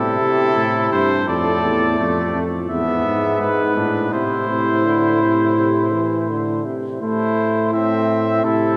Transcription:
Already playing: A2 C3 E4 A4
0.20 C3
0.57 A2
0.92 G2 C5
1.27 F2 A2 A4 D5
1.64 E2
1.98 F2 A3
2.35 F2
2.69 E2 G#2 B3 E5
3.05 G#2
3.41 G#2 B4
3.76 A2 D4
4.12 A2 C3 E4 C5
4.50 C3
4.85 D3
5.22 C3
5.57 C3
5.93 E3
6.30 D3
6.66 C3
7.01 A2 A3 E4 C5
7.73 A2 C4 E5
8.44 A2 C3 E4 A4

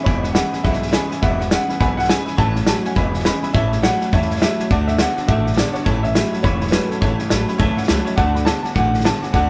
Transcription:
0.04 E1 E2 B2 E3 G#3 B3 B4 C#5 E5 G#5, kick, snare
0.08 E4
0.23 E3 G#3 B3 E4 B4 E5 G#5, snare
0.32 B4 E5 F#5, snare, hi-hat pedal
0.36 E2 C#3 E3 G#3 B3 E4 G#5
0.52 G#3 B3 E4 B4 E5 G#5, muted upright bass stroke, snare
0.56 E3
0.63 B1 E2 B2 E3 G#3 B3 E4 B4 E5 F#5, kick, snare
0.73 snare
0.80 E3 G#3 B3 E4 B4 E5 G#5, snare
0.87 snare
0.92 E2 C#3 E3 G#3 B3 E4 B4 E5 G#5, snare, hi-hat pedal
1.10 E3 G#3 B3 E4 B4 E5 G#5, snare
1.22 E1 E2 B2 E3 G#3 B3 E4 B4 E5 F#5, kick, snare
1.39 E3 G#3 B3 E4 B4 E5 F#5, snare
1.51 E2 C#3 E3 G#3 B3 E4 B4 E5 F#5 G#5, snare, hi-hat pedal
1.69 E3 G#3 B3 E4 B4 E5 G#5, muted upright bass stroke, snare
1.80 B1 E2 B2 E3 G#3 B3 E4 B4 E5 F#5 G#5, kick, snare
1.97 E3 G#3 B3 E4 B4 E5 F#5 G#5, snare
2.04 snare
2.09 E2 C#3 E3 G#3 B3 E4 B4 E5 G#5, snare, hi-hat pedal
2.25 E3 G#3 B3 E4 B4 E5 G#5, muted upright bass stroke, snare
2.37 A1 A2 E3 A3 C#4 E4 C#5 E5 A5, kick, snare
2.55 A3 C#4 E4 C#5 E5 A5, snare
2.66 A2 E3 F#3 A3 C#4 E4 C#5 E5 G#5 A5, snare, hi-hat pedal
2.84 A3 C#4 E4 C#5 E5 F#5 G#5, muted upright bass stroke, snare
2.95 E1 E2 B2 E3 G#3 B3 E4 B4 E5 G#5, kick, snare
3.12 E3 G#3 B3 E4 B4 E5 G#5, snare
3.19 snare
3.25 E2 C#3 E3 G#3 B3 E4 B4 E5 B5, snare, hi-hat pedal
3.42 E3 G#3 B3 E4 B4 E5 G#5, muted upright bass stroke, snare
3.53 A1 A2 E3 A3 C#4 E4 C#5 E5 A5, kick, snare
3.71 A3 C#4 E4 C#5 E5 A5, snare
3.82 A2 E3 F#3 A3 C#4 E4 C#5 E5 F#5 A5, snare, hi-hat pedal
4.00 A3 C#4 E4 C#5 E5 A5, snare
4.12 E2 A2 E3 A3 C#4 E4 C#5 E5 A5, kick, snare
4.22 snare
4.30 A3 C#4 E4 C#5 E5 A5, snare
4.36 snare
4.41 A2 E3 F#3 A3 C#4 E4 C#5 E5 A5, snare, hi-hat pedal
4.59 A3 C#4 E4 C#5 E5 A5, muted upright bass stroke, snare
4.70 D2 D3 A3 D4 F#4 D5 F#5 A5, kick, snare
4.87 A3 D4 F#4 D5 E5 F#5 A5, snare
4.99 D3 A3 B3 D4 F#4 D5 F#5 A5, snare, hi-hat pedal
5.16 A3 D4 F#4 D5 F#5 A5, muted upright bass stroke, snare
5.27 A1 D3 A3 D4 F#4 D5 E5 F#5 A5, kick, snare
5.44 D4 F#4 D5 F#5 A5, snare
5.48 A3
5.53 D5 F#5 A5, snare
5.57 D3 A3 B3 D4 F#4, snare, hi-hat pedal
5.72 F#4 C#5 D5 F#5 A5, muted upright bass stroke, snare
5.77 A3 D4
5.84 A1 A2 E3 A3 C#4 E4 C#5 E5 A5, kick, snare
6.02 A3 C#4 E4 C#5 E5 A5, snare
6.14 A2 E3 F#3 A3 C#4 E4 C#5 E5 G#5, snare, hi-hat pedal
6.31 A3 C#4 E4 C#5 E5 A5, muted upright bass stroke, snare
6.43 E1 A2 E3 A3 C#4 E4 C#5 E5 B5, kick, snare
6.60 A3 C#4 E4 C#5 E5 B5, snare
6.67 B4, snare
6.72 A2 E3 F#3 A3 C#4 E4 C#5 E5 A5, snare, hi-hat pedal
6.89 A3 C#4 E4 A4 C#5 E5 A5, muted upright bass stroke, snare
7.01 A1 A2 E3 A3 C#4 E4 C#5 E5 A5, kick, snare
7.18 A3 C#4 E4 C#5 E5 A5, snare
7.29 A1 A2 E3 F#3 A3 C#4 E4 C#5 E5 A5, snare, hi-hat pedal
7.48 A3 C#4 E4 C#5 E5 B5, snare
7.58 B1 A2 E3 A3 C#4 E4 C#5 E5 A5, kick, snare
7.76 A3 C#4 E4 C#5 E5 F#5, muted upright bass stroke, snare
7.83 snare
7.88 C#2 A2 E3 F#3 A3 C#4 E4 C#5 E5 A5, snare, hi-hat pedal
8.05 A3 C#4 E4 C#5 E5 A5, snare
8.16 D2 D3 A3 D4 F#4 D5 F#5 A5, kick, snare
8.34 A3 D4 F#4 D5 F#5 B5, snare
8.45 D3 A3 B3 D4 F#4 D5 F#5 A5, snare, hi-hat pedal
8.62 A3 D4 F#4 D5 F#5 G#5 A5, muted upright bass stroke, snare
8.74 A1 D3 A3 D4 F#4 D5 F#5 G#5, kick, snare
8.92 A3 D4 F#4 D5 F#5 G#5, snare
9.00 D3, snare
9.04 A3 B3 D4 F#4 D5 F#5 A5, snare, hi-hat pedal
9.21 A3 D4 F#4 D5 F#5 G#5, muted upright bass stroke, snare
9.33 D2 D3 A3 D4 F#4 D5 F#5 A5, kick, snare

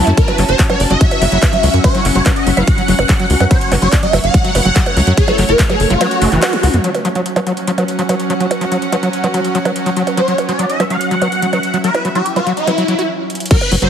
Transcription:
Already playing: F#3 C#4 E4 F#4 A5
0.07 F#2 A3, closed hi-hat
0.17 C#4 B4, kick, closed hi-hat, ride
0.28 F#3, closed hi-hat, percussion blips
0.38 F#1 F#3, clap, open hi-hat
0.49 F#1 C#5, closed hi-hat
0.59 F#3, kick, clap, closed hi-hat, ride
0.69 F#3 D5, closed hi-hat, percussion blips
0.80 F#1, open hi-hat
0.90 F#1 F#3 E5, closed hi-hat
0.98 F#3 F#5, kick, closed hi-hat, ride
1.11 closed hi-hat, percussion blips
1.22 F#1 F#3 B3, open hi-hat
1.32 F#1 F#3 B3, closed hi-hat
1.42 kick, clap, closed hi-hat, ride, percussion blips
1.53 F#3, closed hi-hat
1.63 C#2 F#3, open hi-hat
1.74 F#2, closed hi-hat
1.84 F#3 C#5, kick, closed hi-hat, ride, percussion blips
1.95 F#3 E4, closed hi-hat
2.05 F#1, clap, open hi-hat
2.15 F#1 F#3 D5, closed hi-hat
2.26 F#3, kick, clap, closed hi-hat, ride, percussion blips
2.36 E5, closed hi-hat
2.47 F#1 F#3, open hi-hat
2.57 F#1 F#3 E4 F#5, closed hi-hat, percussion blips
2.67 kick, closed hi-hat, ride
2.78 F#3, closed hi-hat
2.88 F#1 F#3, open hi-hat
2.99 F#1, closed hi-hat, percussion blips
3.09 F#3, kick, clap, closed hi-hat, ride
3.20 F#3, closed hi-hat
3.30 C#2 F#4, open hi-hat
3.40 F#2 F#3 F#4, closed hi-hat, percussion blips
3.51 F#3 A3 C#5, kick, closed hi-hat, ride
3.61 closed hi-hat
3.72 F#1 F#3, clap, open hi-hat, percussion blips
3.82 F#1 F#3 D5, closed hi-hat
3.92 kick, clap, closed hi-hat, ride
4.03 F#3 E5, closed hi-hat
4.13 F#1 F#3, open hi-hat, percussion blips
4.24 F#1 F#5, closed hi-hat
4.31 F#3 C#5, kick, closed hi-hat, ride
4.45 F#3, closed hi-hat
4.55 F#1 B3, open hi-hat, percussion blips
4.65 F#1 F#3 B3, closed hi-hat
4.76 F#3, kick, clap, closed hi-hat, ride
4.86 closed hi-hat, percussion blips
4.97 C#2 F#3, open hi-hat
5.07 F#2 F#3, closed hi-hat
5.17 A4, kick, closed hi-hat, ride
5.28 F#3 E4, closed hi-hat, percussion blips
5.38 F#1 F#3, clap, open hi-hat
5.49 F#1 E4 B4, closed hi-hat
5.59 F#3 E4, kick, clap, closed hi-hat, ride
5.69 F#3 A4, closed hi-hat, percussion blips
5.80 F#1, open hi-hat
5.90 F#1 F#3 F#4, closed hi-hat
6.01 F#3 C#4, closed hi-hat, ride, percussion blips
6.11 closed hi-hat
6.22 F#1 A3, open hi-hat
6.32 F#1 E3, clap, closed hi-hat
6.42 F#4, clap, closed hi-hat, ride, percussion blips
6.53 F#3, closed hi-hat, high tom
6.63 C#2 F#4, open hi-hat, mid tom
6.74 F#2, closed hi-hat, mid tom
6.84 F#3 C#4, closed hi-hat
6.95 closed hi-hat, percussion blips
7.05 F#3, closed hi-hat
7.15 F#3, closed hi-hat
7.26 F#4, closed hi-hat
7.36 F#3, closed hi-hat, percussion blips
7.47 F#3, closed hi-hat
7.52 F#5
7.57 closed hi-hat
7.67 F#3, closed hi-hat
7.78 F#3, closed hi-hat, percussion blips
7.88 closed hi-hat
7.99 F#3, closed hi-hat
8.09 F#3, closed hi-hat, percussion blips
8.20 closed hi-hat
8.30 F#3, closed hi-hat
8.40 F#3, closed hi-hat
8.51 closed hi-hat, percussion blips
8.61 F#3, closed hi-hat
8.72 F#3, closed hi-hat
8.82 closed hi-hat
8.92 F#3, closed hi-hat, percussion blips
9.03 F#3, closed hi-hat
9.13 closed hi-hat
9.24 F#3, closed hi-hat, percussion blips
9.34 F#3, closed hi-hat
9.45 closed hi-hat
9.55 F#3, closed hi-hat
9.65 F#3, closed hi-hat, percussion blips
9.76 closed hi-hat
9.86 F#3, closed hi-hat
9.97 F#3, closed hi-hat
10.07 closed hi-hat, percussion blips
10.17 F#3 C#5, closed hi-hat
10.28 F#3, closed hi-hat
10.38 closed hi-hat, percussion blips
10.49 F#3 D5, closed hi-hat
10.59 F#3, closed hi-hat
10.69 E5, closed hi-hat
10.80 F#3, closed hi-hat, percussion blips
10.90 F#3 F#5, closed hi-hat
11.01 closed hi-hat
11.11 F#3, closed hi-hat
11.22 F#3 B3 E5, closed hi-hat, percussion blips
11.32 B3, closed hi-hat
11.42 F#3, closed hi-hat
11.53 F#3, closed hi-hat, percussion blips
11.63 closed hi-hat
11.74 F#3, closed hi-hat
11.84 F#3 B4, closed hi-hat
11.94 E4, closed hi-hat, percussion blips
12.05 F#3, closed hi-hat
12.15 F#3 E4 G4, closed hi-hat
12.26 E4, closed hi-hat
12.36 F#3 F#4, closed hi-hat, percussion blips
12.47 F#3, closed hi-hat
12.57 E4, closed hi-hat
12.67 F#3 C#4, closed hi-hat, percussion blips
12.78 F#3, closed hi-hat
12.88 F#3, closed hi-hat
12.99 F#4, closed hi-hat
13.30 closed hi-hat
13.35 closed hi-hat
13.40 closed hi-hat
13.46 closed hi-hat
13.51 F#3 C#4 B4, kick, closed hi-hat, crash
13.61 closed hi-hat, percussion blips
13.72 F#1 F#3, open hi-hat
13.82 F#1 F#3 C#5, closed hi-hat

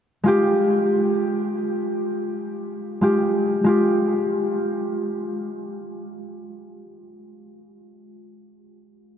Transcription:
0.24 G#3 F4
0.28 G4
3.01 G#3 F4 G4
3.64 G#3 F4
3.68 G4

